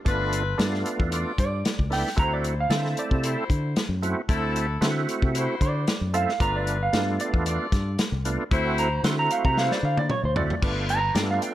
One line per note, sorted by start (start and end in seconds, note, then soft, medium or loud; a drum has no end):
0.05 0.53 G1 medium
0.05 0.43 A3 medium
0.05 0.43 B3 medium
0.05 0.43 D4 medium
0.05 0.43 F4 medium
0.05 0.59 F4 loud
0.05 0.59 A4 medium
0.05 0.59 B4 loud
0.05 kick loud
0.05 closed hi-hat medium
0.32 closed hi-hat medium
0.58 0.83 G2 loud
0.58 1.33 A3 medium
0.58 1.33 B3 medium
0.58 1.33 D4 medium
0.58 1.33 F4 medium
0.58 snare loud
0.58 closed hi-hat medium
0.74 snare soft
0.85 closed hi-hat medium
0.99 1.23 E2 medium
0.99 kick medium
1.11 1.64 F4 medium
1.11 1.65 A4 medium
1.11 1.65 D5 loud
1.11 closed hi-hat medium
1.38 1.62 G2 medium
1.38 1.90 D5 medium
1.38 kick medium
1.38 closed hi-hat medium
1.65 snare loud
1.65 closed hi-hat medium
1.79 2.03 C#2 medium
1.79 kick medium
1.90 2.10 A3 medium
1.90 2.10 B3 medium
1.90 2.10 D4 medium
1.90 2.10 E4 medium
1.90 2.18 G5 medium
1.90 snare soft
1.90 open hi-hat medium
2.07 snare soft
2.16 2.65 D2 medium
2.16 2.55 A3 medium
2.16 2.55 C4 medium
2.16 2.70 E4 medium
2.16 2.55 E4 medium
2.16 2.55 F#4 medium
2.16 2.70 F#4 medium
2.16 2.71 C5 medium
2.16 2.32 A#5 medium
2.16 kick loud
2.16 closed hi-hat medium
2.33 2.58 D5 medium
2.44 closed hi-hat medium
2.60 2.97 F5 medium
2.69 2.94 D3 medium
2.69 3.44 A3 medium
2.69 3.44 C4 medium
2.69 3.45 E4 medium
2.69 3.45 A4 medium
2.69 snare loud
2.69 closed hi-hat medium
2.85 snare soft
2.97 3.49 D5 medium
2.97 closed hi-hat medium
3.11 3.35 C3 medium
3.11 kick medium
3.22 3.75 E4 medium
3.22 3.76 F#4 medium
3.22 3.76 C5 medium
3.22 closed hi-hat medium
3.50 3.74 D3 medium
3.50 kick medium
3.50 closed hi-hat medium
3.76 snare loud
3.76 closed hi-hat medium
3.89 4.13 F#2 medium
4.02 4.22 A3 medium
4.02 4.22 C4 medium
4.02 4.22 E4 medium
4.02 4.22 F#4 medium
4.02 closed hi-hat medium
4.28 4.76 D2 loud
4.28 4.66 A3 medium
4.28 4.67 C4 medium
4.28 4.81 E4 loud
4.28 4.67 E4 medium
4.28 4.82 F#4 medium
4.28 4.67 A4 medium
4.28 4.82 A4 loud
4.28 kick loud
4.28 closed hi-hat medium
4.56 closed hi-hat medium
4.81 5.05 D3 medium
4.81 5.56 A3 medium
4.81 5.56 C4 medium
4.81 5.56 E4 medium
4.81 5.56 F#4 medium
4.81 snare loud
4.81 closed hi-hat medium
5.08 closed hi-hat medium
5.22 5.46 C3 medium
5.22 kick medium
5.34 5.87 E4 medium
5.34 5.88 F#4 medium
5.34 5.88 C5 loud
5.34 closed hi-hat medium
5.61 5.85 D3 medium
5.61 6.13 D5 medium
5.61 kick medium
5.61 closed hi-hat medium
5.87 snare loud
5.87 closed hi-hat medium
6.01 6.25 F#2 medium
6.14 6.33 A3 medium
6.14 6.33 C4 medium
6.14 6.33 E4 medium
6.14 6.33 A4 medium
6.14 6.40 F5 medium
6.14 closed hi-hat medium
6.29 snare soft
6.39 6.88 G1 medium
6.39 6.78 A3 medium
6.39 6.78 B3 medium
6.39 6.78 D4 medium
6.39 6.92 F4 medium
6.39 6.78 F4 medium
6.39 6.93 A4 medium
6.39 6.93 B4 medium
6.39 6.55 A#5 medium
6.39 kick loud
6.39 closed hi-hat medium
6.56 6.81 D5 medium
6.67 closed hi-hat medium
6.83 7.19 F5 medium
6.93 7.17 G2 loud
6.93 7.67 A3 medium
6.93 7.67 B3 medium
6.93 7.67 D4 medium
6.93 7.67 F4 medium
6.93 snare loud
6.93 closed hi-hat medium
7.20 7.71 D5 loud
7.20 closed hi-hat medium
7.33 7.57 E2 medium
7.33 kick medium
7.44 7.98 F4 medium
7.44 7.99 A4 medium
7.44 7.99 D5 medium
7.44 closed hi-hat medium
7.72 7.96 G2 medium
7.72 kick medium
7.72 snare soft
7.72 closed hi-hat medium
7.99 snare loud
7.99 closed hi-hat medium
8.12 8.36 C2 medium
8.25 8.44 A3 medium
8.25 8.44 B3 medium
8.25 8.44 D4 medium
8.25 8.44 F4 loud
8.25 closed hi-hat medium
8.51 8.99 D2 loud
8.51 8.89 A3 medium
8.51 8.89 C4 medium
8.51 9.04 E4 loud
8.51 8.89 E4 medium
8.51 8.89 F#4 loud
8.51 9.04 F#4 medium
8.51 9.05 C5 loud
8.51 kick loud
8.51 closed hi-hat medium
8.78 9.04 A#5 medium
8.78 closed hi-hat medium
9.03 9.27 D3 loud
9.03 9.78 A3 medium
9.03 9.78 C4 medium
9.03 9.78 E4 medium
9.03 9.78 F#4 medium
9.03 9.18 C6 medium
9.03 snare loud
9.03 closed hi-hat medium
9.19 9.31 A#5 medium
9.30 9.45 F5 medium
9.30 closed hi-hat medium
9.45 9.68 C3 medium
9.45 9.57 A#5 medium
9.45 kick medium
9.56 10.09 E4 medium
9.56 10.10 F#4 medium
9.56 10.10 C5 medium
9.56 9.71 F5 medium
9.56 snare medium
9.71 9.83 D5 medium
9.71 snare medium
9.83 10.07 D3 medium
9.83 9.98 F5 medium
9.97 10.10 D5 medium
9.97 high tom medium
10.10 10.24 C#5 loud
10.10 mid tom medium
10.23 10.47 D2 medium
10.23 10.36 C5 medium
10.36 10.55 A3 medium
10.36 10.55 C4 medium
10.36 10.55 E4 medium
10.36 10.55 F#4 medium
10.36 10.62 D5 loud
10.36 floor tom loud
10.50 floor tom medium
10.62 11.10 G1 loud
10.62 11.00 A3 medium
10.62 11.00 B3 medium
10.62 11.00 D4 medium
10.62 11.15 F4 medium
10.62 11.00 F4 medium
10.62 11.15 A4 medium
10.62 11.15 B4 medium
10.62 kick loud
10.62 crash loud
10.89 11.15 A#5 loud
10.89 closed hi-hat medium
11.14 11.38 G2 medium
11.14 11.54 A3 medium
11.14 11.54 B3 medium
11.14 11.54 D4 medium
11.14 11.54 F4 medium
11.14 11.29 G5 medium
11.14 snare loud
11.14 closed hi-hat medium
11.31 11.42 F5 medium
11.42 11.54 G5 medium
11.42 closed hi-hat medium